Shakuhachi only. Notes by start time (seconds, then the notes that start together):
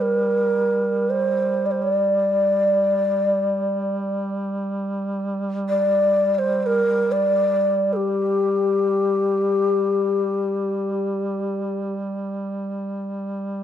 0.01 A#4
1.10 C5
1.66 D5
1.71 C5
1.82 D5
5.69 D5
6.35 C5 D5
6.63 A#4 C5
7.12 D5
7.93 G4 A4